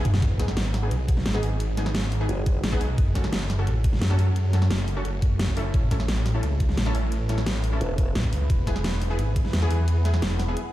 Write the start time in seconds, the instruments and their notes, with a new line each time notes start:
Already playing: ambient pad E4 B4 F#5
0.05 detuned saw bass E1, closed hi-hat, mid tom
0.14 snare
0.22 detuned saw bass G#1, ambient pad G#3 D#4 G#4, kick, closed hi-hat
0.40 synth stab B3 D#4 G#4, kick, snare, closed hi-hat
0.48 snare
0.57 detuned saw bass G#1, snare, closed hi-hat
0.74 snare, open hi-hat
0.83 synth stab B3 D#4 G#4
0.91 detuned saw bass B1, closed hi-hat
1.08 kick, closed hi-hat
1.17 snare
1.26 detuned saw bass G#1, snare, closed hi-hat
1.34 synth stab B3 D#4 G#4, snare
1.43 detuned saw bass G#1, open hi-hat
1.60 closed hi-hat
1.77 synth stab B3 D#4 G#4, snare, closed hi-hat
1.86 snare
1.95 detuned saw bass G#1, snare, closed hi-hat
2.12 open hi-hat
2.21 synth stab B3 D#4 G#4
2.29 wobble bass F#1, closed hi-hat
2.46 kick, closed hi-hat
2.64 detuned saw bass G#1, snare, closed hi-hat
2.72 synth stab B3 D#4 G#4, kick
2.81 detuned saw bass B1, open hi-hat
2.98 detuned saw bass F#1, ambient pad A3 C#4 F#4, kick, closed hi-hat
3.15 synth stab C#4 F#4 A4, kick, snare, closed hi-hat
3.24 snare
3.33 detuned saw bass F#1, snare, closed hi-hat
3.50 snare, open hi-hat
3.58 synth stab C#4 F#4 A4
3.67 detuned saw bass A1, closed hi-hat
3.84 kick, closed hi-hat
3.93 snare
4.02 detuned saw bass F#2, snare, closed hi-hat
4.10 synth stab C#4 F#4 A4, snare
4.19 detuned saw bass F#2, open hi-hat
4.36 closed hi-hat
4.53 synth stab C#4 F#4 A4, snare, closed hi-hat
4.62 snare
4.71 detuned saw bass F#1, snare, closed hi-hat
4.88 open hi-hat
4.96 synth stab C#4 F#4 A4
5.05 detuned saw bass F#1, closed hi-hat
5.22 kick, closed hi-hat
5.39 snare, closed hi-hat
5.48 kick
5.57 detuned saw bass F#1, synth stab C#4 E4 A4, open hi-hat
5.74 detuned saw bass A1, ambient pad A3 E4 B4, kick, closed hi-hat
5.91 synth stab C#4 E4 A4, kick, snare, closed hi-hat
6.00 snare
6.08 detuned saw bass A1, snare, closed hi-hat
6.26 snare, open hi-hat
6.34 synth stab C#4 E4 A4
6.43 detuned saw bass C#2, closed hi-hat
6.60 kick, closed hi-hat
6.69 snare
6.77 detuned saw bass A1, snare, closed hi-hat
6.86 synth stab C#4 E4 A4, snare
6.95 detuned saw bass A1, open hi-hat
7.12 closed hi-hat
7.29 synth stab C#4 E4 A4, snare, closed hi-hat
7.38 snare
7.46 detuned saw bass A1, snare, closed hi-hat
7.64 open hi-hat
7.72 synth stab C#4 E4 A4
7.81 wobble bass E1, closed hi-hat
7.98 kick, closed hi-hat
8.15 detuned saw bass A1, snare, closed hi-hat
8.24 kick
8.33 detuned saw bass C#2, open hi-hat
8.50 detuned saw bass E1, ambient pad F#5, kick, closed hi-hat
8.67 synth stab B3 E4 G#4, kick, snare, closed hi-hat
8.76 snare
8.84 detuned saw bass E1, snare, closed hi-hat
9.02 open hi-hat
9.10 synth stab B3 E4 G#4
9.19 detuned saw bass G#1, closed hi-hat
9.36 kick, closed hi-hat
9.45 snare
9.53 detuned saw bass E2, snare, closed hi-hat
9.62 synth stab B3 E4 G#4, snare
9.71 detuned saw bass E2, open hi-hat
9.88 closed hi-hat
10.05 synth stab B3 E4 G#4, snare, closed hi-hat
10.14 snare
10.22 detuned saw bass E1, snare, closed hi-hat
10.39 snare, open hi-hat
10.48 synth stab B3 E4 G#4
10.57 closed hi-hat